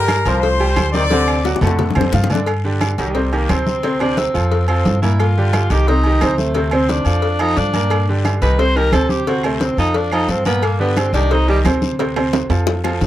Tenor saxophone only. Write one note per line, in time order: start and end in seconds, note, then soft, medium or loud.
2.98 3.35 G3 medium
3.33 3.53 A#3 medium
3.51 4.02 C4 medium
4.01 4.19 D4 loud
4.18 4.67 C4 medium
4.68 5.00 C4 medium
5.02 5.21 E4 medium
5.20 5.72 F4 medium
5.70 5.90 G4 loud
5.88 6.37 D#4 medium
6.38 6.75 A3 medium
6.73 6.91 C4 medium
6.90 7.42 D4 medium
7.41 7.59 D#4 loud
7.58 8.09 D4 medium
8.42 8.61 B4 loud
8.60 8.78 C5 loud
8.76 8.95 A#4 loud
8.93 9.11 A4 loud
9.09 9.29 G4 medium
9.28 9.45 F#4 medium
9.45 9.63 A3 medium
9.61 9.78 C4 medium
9.79 9.98 D#4 loud
9.97 10.13 D4 medium
10.13 10.31 D#4 loud
10.30 10.45 C4 medium
10.46 10.66 B3 medium
10.64 10.80 A#3 medium
10.81 11.00 B3 medium
10.98 11.13 C4 medium
11.14 11.34 D4 loud
11.32 11.49 D#4 loud
11.49 11.59 G3 medium